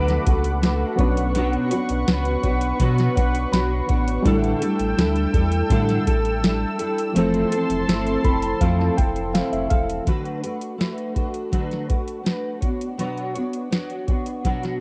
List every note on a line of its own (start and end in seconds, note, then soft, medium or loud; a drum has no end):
0.00 0.19 D2 loud
0.00 0.26 D3 loud
0.00 0.26 F#3 medium
0.00 0.93 F#3 medium
0.00 0.26 A3 medium
0.00 0.94 A3 medium
0.00 0.95 B3 medium
0.00 0.26 D4 medium
0.00 0.95 D4 medium
0.00 0.25 F#4 medium
0.00 0.95 A4 medium
0.00 0.96 A4 medium
0.00 0.24 B4 loud
0.00 4.21 F#5 medium
0.00 0.96 B5 medium
0.00 0.96 D6 medium
0.08 snare soft
0.08 closed hi-hat soft
0.25 0.84 C#2 medium
0.25 0.60 A3 soft
0.25 0.62 D4 soft
0.25 0.62 F#4 medium
0.25 0.62 B4 medium
0.25 kick loud
0.25 closed hi-hat medium
0.44 closed hi-hat medium
0.61 0.98 A3 medium
0.61 0.99 D4 medium
0.61 0.98 F#4 medium
0.61 0.98 B4 medium
0.61 snare medium
0.61 closed hi-hat medium
0.96 1.57 B1 loud
0.96 3.84 F#3 medium
0.96 3.84 B3 medium
0.96 3.85 C#4 medium
0.96 3.85 D4 medium
0.96 1.35 F#4 medium
0.96 4.22 B4 medium
0.96 1.35 C#5 medium
0.96 4.22 C#6 medium
0.96 kick loud
0.96 closed hi-hat medium
1.01 1.34 B3 soft
1.01 1.35 D4 medium
1.01 3.86 B4 medium
1.17 closed hi-hat medium
1.35 1.71 B2 medium
1.35 1.71 F#3 medium
1.35 1.72 B3 medium
1.35 1.71 D4 loud
1.35 1.71 F#4 loud
1.35 1.69 C#5 loud
1.35 closed hi-hat medium
1.53 closed hi-hat soft
1.70 2.06 B3 medium
1.70 2.07 D4 medium
1.70 2.08 F#4 medium
1.70 2.07 C#5 medium
1.70 closed hi-hat medium
1.89 2.04 B1 medium
1.89 closed hi-hat medium
2.07 2.37 C#2 loud
2.07 2.44 B3 medium
2.07 2.44 D4 medium
2.07 2.43 F#4 medium
2.07 2.41 C#5 medium
2.07 snare loud
2.07 closed hi-hat medium
2.25 closed hi-hat soft
2.43 2.73 B1 medium
2.43 2.79 B3 soft
2.43 2.80 D4 medium
2.43 2.80 F#4 medium
2.43 2.79 C#5 medium
2.43 kick medium
2.43 closed hi-hat medium
2.61 closed hi-hat medium
2.79 3.16 B2 medium
2.79 3.09 B2 loud
2.79 3.17 F#3 medium
2.79 3.17 B3 loud
2.79 3.17 D4 medium
2.79 3.16 F#4 loud
2.79 3.14 C#5 loud
2.79 kick medium
2.79 closed hi-hat medium
2.98 snare soft
2.98 closed hi-hat soft
3.15 3.46 B1 medium
3.15 3.50 B3 soft
3.15 3.52 D4 medium
3.15 3.53 F#4 medium
3.15 3.52 C#5 medium
3.15 kick loud
3.15 closed hi-hat medium
3.35 closed hi-hat medium
3.51 3.82 B1 loud
3.51 3.88 B3 medium
3.51 3.89 D4 medium
3.51 3.88 F#4 medium
3.51 3.87 C#5 medium
3.51 4.21 B5 medium
3.51 snare loud
3.51 closed hi-hat medium
3.88 4.18 A1 loud
3.88 4.25 B3 soft
3.88 4.25 D4 medium
3.88 4.26 F#4 medium
3.88 4.25 C#5 medium
3.88 kick loud
3.88 closed hi-hat medium
4.08 closed hi-hat medium
4.22 4.54 A1 loud
4.22 4.61 A2 loud
4.22 4.61 D3 medium
4.22 7.10 G3 medium
4.22 4.62 G3 medium
4.22 7.11 A3 medium
4.22 7.12 D4 medium
4.22 4.62 D4 loud
4.22 7.12 E4 medium
4.22 4.60 E4 loud
4.22 7.13 A4 medium
4.22 7.13 G5 medium
4.22 10.03 E6 medium
4.22 kick loud
4.22 closed hi-hat medium
4.27 4.59 A4 loud
4.27 7.13 A4 loud
4.44 closed hi-hat soft
4.60 4.95 G3 medium
4.60 4.96 D4 medium
4.60 4.97 E4 medium
4.60 4.97 A4 medium
4.60 closed hi-hat loud
4.79 4.94 A1 medium
4.79 closed hi-hat medium
4.96 5.27 D2 loud
4.96 5.33 G3 medium
4.96 5.34 D4 medium
4.96 5.34 E4 medium
4.96 5.32 A4 medium
4.96 snare loud
4.96 closed hi-hat medium
5.16 closed hi-hat soft
5.33 5.63 E2 loud
5.33 5.70 G3 soft
5.33 5.70 D4 medium
5.33 5.71 E4 medium
5.33 5.70 A4 medium
5.33 kick medium
5.33 closed hi-hat medium
5.52 closed hi-hat medium
5.70 6.06 A2 medium
5.70 5.99 A2 loud
5.70 6.07 D3 medium
5.70 6.07 G3 loud
5.70 6.07 D4 loud
5.70 6.06 E4 loud
5.70 6.05 A4 loud
5.70 kick medium
5.70 closed hi-hat loud
5.89 snare soft
5.89 closed hi-hat soft
6.06 6.65 A1 medium
6.06 6.40 G3 soft
6.06 6.42 D4 soft
6.06 6.43 E4 medium
6.06 6.43 A4 medium
6.06 kick loud
6.06 closed hi-hat medium
6.25 closed hi-hat soft
6.42 6.79 G3 medium
6.42 6.79 D4 medium
6.42 6.79 E4 medium
6.42 6.77 A4 medium
6.42 snare loud
6.42 closed hi-hat medium
6.79 7.15 G3 soft
6.79 7.16 D4 medium
6.79 7.16 E4 medium
6.79 7.15 A4 medium
6.79 closed hi-hat medium
6.98 closed hi-hat medium
7.13 7.45 F1 loud
7.13 10.04 E3 medium
7.13 10.02 F3 medium
7.13 7.52 F3 medium
7.13 10.02 A3 medium
7.13 7.52 A3 loud
7.13 10.03 C4 medium
7.13 7.52 C4 loud
7.13 7.51 E4 medium
7.13 10.04 A4 medium
7.13 10.04 A5 medium
7.13 10.04 C6 medium
7.13 closed hi-hat loud
7.18 7.49 A4 medium
7.18 10.04 A4 medium
7.34 closed hi-hat soft
7.51 7.88 C4 soft
7.51 7.89 E4 medium
7.51 7.88 A4 medium
7.51 closed hi-hat medium
7.70 7.84 F1 loud
7.70 closed hi-hat medium
7.87 8.17 G1 loud
7.87 8.24 A3 medium
7.87 8.25 C4 medium
7.87 8.24 E4 medium
7.87 8.22 A4 medium
7.87 snare loud
7.87 closed hi-hat medium
8.07 closed hi-hat soft
8.23 8.54 F1 loud
8.23 8.61 C4 medium
8.23 8.61 E4 medium
8.23 8.60 A4 medium
8.23 8.42 B5 medium
8.23 kick loud
8.23 closed hi-hat medium
8.42 8.60 A5 medium
8.42 closed hi-hat medium
8.60 8.90 F2 loud
8.60 8.97 F3 medium
8.60 8.98 A3 medium
8.60 8.98 C4 medium
8.60 8.97 E4 medium
8.60 8.96 A4 medium
8.60 8.78 F5 medium
8.60 kick medium
8.60 closed hi-hat medium
8.79 8.96 A5 medium
8.79 snare soft
8.97 9.42 F1 loud
8.97 9.33 C4 soft
8.97 9.34 E4 medium
8.97 9.34 A4 medium
8.97 9.31 G5 medium
8.97 kick loud
8.97 closed hi-hat medium
9.16 closed hi-hat soft
9.33 9.70 A3 medium
9.33 9.71 C4 medium
9.33 9.70 E4 medium
9.33 9.68 A4 medium
9.33 9.51 F5 medium
9.33 snare medium
9.33 closed hi-hat medium
9.52 9.67 F1 medium
9.52 9.69 E5 medium
9.52 closed hi-hat soft
9.70 10.00 E1 medium
9.70 10.07 C4 soft
9.70 10.07 E4 medium
9.70 10.07 A4 medium
9.70 10.04 F5 medium
9.70 kick loud
9.70 closed hi-hat medium
9.89 closed hi-hat medium
10.06 10.43 D3 medium
10.06 10.43 F#3 medium
10.06 10.43 A3 medium
10.06 10.43 D4 medium
10.06 10.42 F#4 medium
10.06 10.41 B4 medium
10.06 kick medium
10.06 closed hi-hat medium
10.25 closed hi-hat soft
10.42 10.76 A3 soft
10.42 10.78 D4 soft
10.42 10.79 F#4 soft
10.42 10.79 B4 medium
10.42 closed hi-hat medium
10.61 closed hi-hat medium
10.78 11.15 A3 medium
10.78 11.16 D4 medium
10.78 11.15 F#4 medium
10.78 11.13 B4 medium
10.78 snare loud
10.78 closed hi-hat medium
10.98 closed hi-hat soft
11.15 11.52 A3 soft
11.15 11.52 D4 soft
11.15 11.53 F#4 medium
11.15 11.52 B4 medium
11.15 kick medium
11.15 closed hi-hat soft
11.34 closed hi-hat soft
11.52 11.89 D3 medium
11.52 11.89 F#3 medium
11.52 11.89 A3 medium
11.52 11.89 D4 medium
11.52 11.88 F#4 medium
11.52 11.87 B4 medium
11.52 kick medium
11.52 closed hi-hat medium
11.71 snare soft
11.71 closed hi-hat soft
11.88 12.22 A3 soft
11.88 12.24 D4 soft
11.88 12.25 F#4 soft
11.88 12.25 B4 soft
11.88 kick medium
11.88 closed hi-hat medium
12.08 closed hi-hat soft
12.24 12.61 A3 medium
12.24 12.62 D4 medium
12.24 12.61 F#4 medium
12.24 12.60 B4 medium
12.24 snare medium
12.24 closed hi-hat medium
12.61 12.98 B3 soft
12.61 12.98 D4 soft
12.61 12.99 F#4 soft
12.61 12.98 C#5 soft
12.61 kick medium
12.61 closed hi-hat medium
12.81 closed hi-hat medium
12.98 13.35 B2 medium
12.98 13.35 F#3 medium
12.98 13.36 B3 medium
12.98 13.36 D4 medium
12.98 13.34 F#4 medium
12.98 13.33 C#5 medium
12.98 closed hi-hat medium
13.18 closed hi-hat soft
13.34 13.69 B3 soft
13.34 13.70 D4 soft
13.34 13.72 F#4 medium
13.34 13.71 C#5 medium
13.34 closed hi-hat medium
13.53 closed hi-hat soft
13.71 14.08 B3 medium
13.71 14.08 D4 medium
13.71 14.08 F#4 medium
13.71 14.06 C#5 medium
13.71 snare medium
13.71 closed hi-hat medium
13.90 closed hi-hat soft
14.07 14.44 B3 soft
14.07 14.45 D4 medium
14.07 14.45 F#4 soft
14.07 14.45 C#5 medium
14.07 kick medium
14.07 closed hi-hat medium
14.26 closed hi-hat soft
14.44 14.80 B2 medium
14.44 14.80 F#3 medium
14.44 14.80 B3 medium
14.44 14.80 D4 medium
14.44 14.80 F#4 medium
14.44 14.80 C#5 medium
14.44 kick medium
14.44 closed hi-hat medium
14.63 snare soft
14.63 closed hi-hat soft